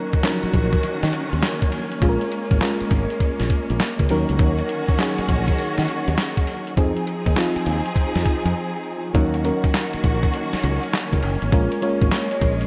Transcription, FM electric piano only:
0.00 0.14 F#3 medium
0.00 0.14 C#4 medium
0.00 0.14 D#4 medium
0.00 0.14 A#4 medium
0.24 0.32 F3 medium
0.24 1.14 C#4 medium
0.24 1.14 D#4 medium
0.24 1.14 A#4 loud
0.30 1.17 F#3 medium
2.02 2.51 G#3 medium
2.02 2.51 C#4 medium
2.02 2.51 F4 medium
2.02 2.11 G#4 medium
2.09 2.55 A#4 loud
2.61 3.51 G#3 medium
2.61 3.51 C#4 medium
2.61 3.52 F4 medium
2.61 3.52 A#4 loud
4.10 4.85 F#3 medium
4.10 4.85 C#4 medium
4.10 4.85 D#4 medium
4.10 4.86 A#4 loud
4.99 5.89 F#3 medium
4.99 5.89 C#4 medium
4.99 5.89 D#4 medium
4.99 5.90 G#4 loud
6.78 7.27 F3 medium
6.78 7.27 C4 medium
6.78 7.27 D#4 medium
6.78 7.27 G#4 loud
7.37 8.27 F3 medium
7.37 8.27 C4 medium
7.37 8.27 D#4 medium
7.37 8.27 F4 loud
9.14 9.39 F#3 medium
9.14 9.39 C#4 medium
9.14 9.40 D#4 medium
9.14 9.40 A#4 medium
9.44 10.34 F#3 medium
9.44 10.35 C#4 medium
9.44 10.35 D#4 medium
9.44 10.35 A#4 medium
11.52 11.77 G#3 medium
11.52 11.77 C#4 medium
11.52 11.77 F4 medium
11.52 11.78 A#4 medium
11.82 12.67 G#3 medium
11.82 12.67 C#4 medium
11.82 12.67 F4 medium
11.82 12.67 C#5 medium

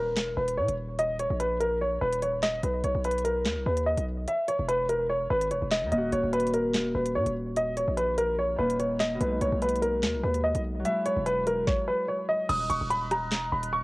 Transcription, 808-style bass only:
0.00 0.18 D#1 loud
0.17 0.29 E1 loud
0.27 0.37 D#1 loud
0.37 0.59 D#1 loud
0.58 0.68 A#2 loud
0.69 1.28 D#1 loud
1.30 1.99 A#1 loud
2.02 2.61 D#1 loud
2.63 2.83 B1 loud
2.84 2.94 B1 loud
2.95 3.47 B1 loud
3.45 3.58 D#2 loud
3.56 3.65 B1 loud
3.66 3.96 D#2 loud
3.97 4.26 B1 loud
4.59 5.27 E1 loud
5.30 5.52 G#1 loud
5.51 5.61 D#1 medium
5.62 5.84 E1 loud
5.82 5.92 E2 loud
5.92 6.12 D#1 loud
6.13 6.23 D#1 loud
6.24 6.76 D#1 loud
6.74 6.87 E1 loud
6.85 6.94 D#1 loud
6.95 7.17 D#1 loud
7.15 7.26 A#2 loud
7.26 7.85 D#1 loud
7.88 8.56 A#1 loud
8.59 9.18 D#1 loud
9.21 9.40 B1 loud
9.41 9.52 B1 loud
9.52 10.05 B1 loud
10.03 10.15 D#2 loud
10.14 10.23 B1 loud
10.24 10.54 D#2 loud
10.55 10.84 B1 loud
11.16 11.65 E1 loud
12.49 12.69 D#1 loud
12.70 12.80 D#1 loud
12.81 13.33 D#1 loud
13.32 13.44 E1 loud
13.43 13.52 D#1 loud
13.52 13.84 D#1 loud

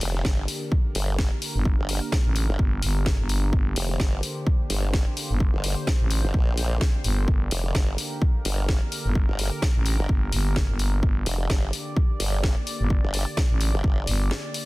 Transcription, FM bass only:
1.55 1.77 G1 loud
2.26 2.47 A1 loud
2.59 2.81 G1 loud
2.83 3.17 G1 loud
3.20 3.51 G1 medium
3.53 3.75 G1 loud
5.30 5.52 G1 loud
6.01 6.22 A1 loud
7.04 7.26 G1 loud
7.28 7.50 G1 medium
9.05 9.27 G1 loud
9.76 9.97 A1 loud
10.09 10.31 G1 loud
10.32 10.67 G1 loud
10.70 11.01 G1 medium
11.03 11.25 G1 loud
12.80 13.02 G1 loud
13.51 13.72 A1 loud
14.07 14.31 G1 loud

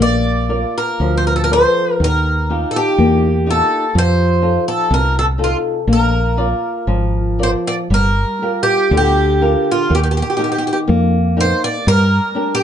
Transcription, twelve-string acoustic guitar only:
0.02 0.77 D5 medium
0.78 1.16 A#4 medium
1.17 1.25 C5 medium
1.27 1.34 A#4 medium
1.36 1.43 A4 medium
1.44 1.52 A#4 medium
1.53 2.03 C5 medium
2.04 2.71 A#4 medium
2.71 2.76 A4 medium
2.76 3.50 G4 medium
3.50 3.97 A4 medium
3.98 4.64 C5 medium
4.68 4.92 A4 medium
4.94 5.15 A#4 medium
5.19 5.25 A4 medium
5.44 5.56 F4 medium
5.93 7.37 A#4 medium
7.43 7.50 C5 medium
7.67 7.74 D5 medium
7.94 8.62 A#4 medium
8.63 8.95 G4 medium
8.97 9.70 G4 medium
9.71 9.93 F4 medium
9.95 9.99 G4 medium
10.03 10.07 G4 medium
10.11 10.14 G4 soft
10.17 10.21 G4 soft
10.22 10.27 G4 medium
10.30 10.35 G4 soft
10.37 10.42 G4 soft
10.44 10.49 G4 soft
10.52 10.56 G4 medium
10.58 10.63 G4 soft
10.67 10.72 G4 soft
10.73 10.78 G4 soft
11.40 11.63 C5 medium
11.64 11.88 D5 medium
11.88 12.54 A#4 loud
12.55 12.63 G4 medium

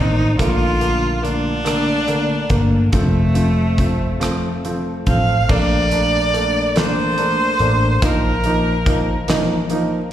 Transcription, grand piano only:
0.00 0.22 D#3 medium
0.00 0.22 A#3 medium
0.00 0.22 C4 medium
0.38 0.64 D3 medium
0.38 0.65 A3 medium
0.38 0.65 A#3 medium
0.80 1.07 D3 medium
0.80 1.07 A3 medium
0.80 1.07 A#3 medium
1.22 1.48 D3 medium
1.22 1.49 A3 medium
1.22 1.49 A#3 medium
1.65 1.91 D3 medium
1.65 1.91 A3 medium
1.65 1.91 A#3 medium
2.07 2.34 D3 medium
2.07 2.34 A3 medium
2.07 2.34 A#3 medium
2.49 2.76 D3 medium
2.49 2.76 A3 medium
2.49 2.76 A#3 medium
2.92 3.19 F3 medium
2.92 3.19 A3 medium
2.92 3.19 C4 medium
3.34 3.61 F3 medium
3.34 3.61 A3 medium
3.34 3.62 C4 medium
3.78 4.05 F3 medium
3.78 4.05 A3 medium
3.78 4.05 C4 medium
4.20 4.47 F3 medium
4.20 4.47 A3 medium
4.20 4.47 C4 medium
4.64 4.91 F3 medium
4.64 4.91 A3 medium
4.64 4.91 C4 medium
5.07 5.33 F3 medium
5.07 5.33 A3 medium
5.07 5.33 C4 medium
5.49 5.75 A3 medium
5.49 5.75 A#3 medium
5.49 5.75 D4 medium
5.91 6.17 A3 medium
5.91 6.17 A#3 medium
5.91 6.18 D4 medium
6.34 6.59 A3 medium
6.34 6.60 A#3 medium
6.34 6.60 D4 medium
6.76 7.02 A3 medium
6.76 7.02 A#3 medium
6.76 7.02 D4 loud
7.18 7.44 A3 medium
7.18 7.44 A#3 medium
7.18 7.44 D4 medium
7.60 7.86 A3 medium
7.60 7.86 A#3 medium
7.60 7.86 D4 medium
8.02 8.28 F3 medium
8.02 8.28 A#3 medium
8.02 8.28 D#4 loud
8.45 8.71 F3 medium
8.45 8.71 A#3 medium
8.45 8.71 D#4 medium
8.86 9.12 F3 medium
8.86 9.12 A#3 medium
8.86 9.12 D#4 medium
9.28 9.54 F3 medium
9.28 9.54 A#3 medium
9.28 9.54 D#4 loud
9.70 9.96 F3 medium
9.70 9.96 A#3 medium
9.70 9.96 D#4 medium

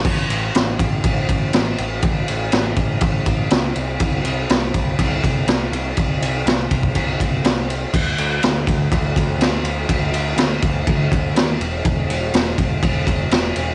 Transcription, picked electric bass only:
0.04 0.25 A1 loud
0.29 0.49 A1 loud
0.55 0.75 A1 loud
0.79 0.99 A1 medium
1.04 1.24 A1 loud
1.29 1.49 A1 medium
1.53 1.74 A1 loud
1.79 1.99 A1 loud
2.03 2.23 A1 loud
2.29 2.49 A1 medium
2.53 2.73 A1 medium
2.77 2.98 A1 medium
3.02 3.22 A1 loud
3.26 3.47 A1 loud
3.51 3.71 C#2 loud
3.76 3.96 C2 loud
4.00 4.21 C2 loud
4.24 4.45 C2 loud
4.50 4.70 C2 loud
4.74 4.95 C2 loud
4.99 5.19 C2 loud
5.24 5.44 C2 loud
5.47 5.68 C2 loud
5.71 5.92 C2 loud
5.97 6.18 C2 medium
6.21 6.42 C2 medium
6.46 6.66 C2 loud
6.71 6.91 C2 medium
6.95 7.16 C2 loud
7.20 7.40 C2 loud
7.44 7.85 C2 loud
7.93 8.14 D2 loud
8.18 8.39 D2 loud
8.44 8.64 D2 loud
8.67 8.88 D2 medium
8.92 9.12 D2 loud
9.15 9.36 D2 medium
9.38 9.60 D2 medium
9.63 9.84 D2 medium
9.89 10.10 D2 loud
10.11 10.33 D2 medium
10.37 10.58 D2 medium
10.63 10.83 D2 medium
10.87 11.08 D2 loud
11.12 11.32 D2 medium
11.35 11.56 D#2 loud
11.60 11.81 E1 loud
11.85 12.05 E1 loud
12.09 12.30 E1 loud
12.33 12.54 E1 loud
12.58 12.79 E1 medium
12.83 13.03 E1 loud
13.07 13.27 E1 medium
13.31 13.51 E1 loud
13.56 13.74 E1 loud

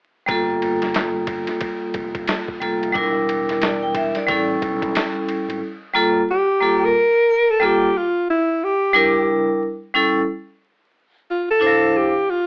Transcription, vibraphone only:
0.26 2.57 G3 medium
0.26 2.57 A#3 medium
0.26 2.58 F4 medium
0.31 2.59 A4 medium
2.60 2.92 G3 medium
2.60 2.95 A#3 soft
2.60 2.95 F4 soft
2.60 2.96 A4 medium
2.93 4.25 G3 medium
2.93 4.25 D4 medium
2.93 4.26 E4 medium
2.98 4.27 A#4 medium
3.62 3.81 D5 medium
3.83 3.95 G5 medium
3.96 4.15 E5 medium
4.16 4.48 D5 medium
4.27 5.58 G3 medium
4.27 5.59 C#4 medium
4.27 5.60 E4 medium
4.31 5.61 A4 medium
5.93 6.20 G3 medium
5.93 6.20 A#3 medium
5.93 6.21 F4 medium
5.93 6.21 A4 medium
6.60 6.87 G3 medium
6.60 6.87 A#3 medium
6.60 6.88 F4 medium
6.60 6.88 A4 medium
7.60 7.86 G3 medium
7.60 7.87 A#3 medium
7.60 7.87 F4 medium
7.60 7.88 A4 medium
8.93 9.61 G3 medium
8.93 9.61 D4 medium
8.93 9.62 E4 medium
8.93 9.62 A#4 medium
9.94 10.20 G3 medium
9.94 10.20 C#4 medium
9.94 10.21 E4 medium
9.94 10.21 A4 medium
11.60 12.11 D4 medium
11.60 11.61 E4 soft
11.60 12.11 E4 medium
11.60 12.12 C5 medium
11.66 12.14 F3 medium

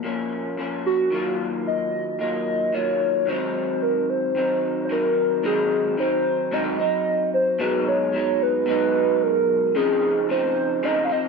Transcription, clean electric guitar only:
0.03 0.56 A#2 medium
0.03 0.58 F3 medium
0.03 0.59 A#3 medium
0.03 0.59 C#4 medium
0.57 1.10 A#2 medium
0.57 1.12 F3 medium
0.57 1.13 A#3 medium
0.57 1.13 C#4 medium
1.11 2.18 D#3 medium
1.11 2.20 F#3 medium
1.11 2.20 A#3 medium
1.15 2.20 F4 medium
2.19 2.72 D#3 medium
2.19 2.73 F#3 medium
2.19 2.73 A#3 medium
2.19 2.74 F4 medium
2.73 3.27 D#3 medium
2.73 3.28 F#3 medium
2.73 3.28 A#3 medium
2.73 3.29 F4 medium
3.26 4.35 G#2 medium
3.26 4.34 D#3 medium
3.26 4.36 F#3 medium
3.26 4.37 C4 medium
3.30 4.38 D#4 medium
4.35 4.89 D#3 medium
4.35 4.90 F#3 medium
4.35 4.91 C4 medium
4.35 4.92 D#4 medium
4.89 5.43 D#3 medium
4.89 5.44 F#3 medium
4.89 5.45 C4 medium
4.89 5.45 D#4 medium
5.43 5.97 G#2 medium
5.43 5.97 D#3 medium
5.43 5.98 F#3 medium
5.43 5.98 C4 medium
5.43 6.00 D#4 medium
5.97 6.51 D#3 medium
5.97 6.52 F#3 medium
5.97 6.51 C4 medium
5.97 6.53 D#4 medium
6.51 6.78 G#2 medium
6.51 6.79 D#3 medium
6.51 6.79 F#3 medium
6.51 6.78 C4 medium
6.51 6.77 D#4 medium
6.78 7.59 F#3 soft
6.78 7.60 C4 medium
6.78 7.61 D#4 medium
7.59 8.11 B2 medium
7.59 8.12 F#3 medium
7.59 8.14 G#3 medium
7.59 8.15 D#4 medium
8.12 8.65 B2 medium
8.12 8.66 F#3 medium
8.12 8.69 G#3 medium
8.12 8.70 D#4 medium
8.66 9.74 B2 medium
8.66 9.75 F#3 medium
8.66 9.76 G#3 medium
8.70 9.76 D#4 loud
9.75 10.28 C#3 medium
9.75 10.29 F3 medium
9.75 10.30 C4 loud
9.75 10.32 D#4 medium
10.29 10.82 C#3 medium
10.29 10.82 F3 medium
10.29 10.83 C4 medium
10.29 10.84 D#4 medium
10.83 11.10 C#3 medium
10.83 11.10 F3 medium
10.83 11.10 C4 loud
10.83 11.08 D#4 loud
11.10 11.29 F3 soft
11.10 11.29 C4 medium
11.10 11.29 D#4 medium

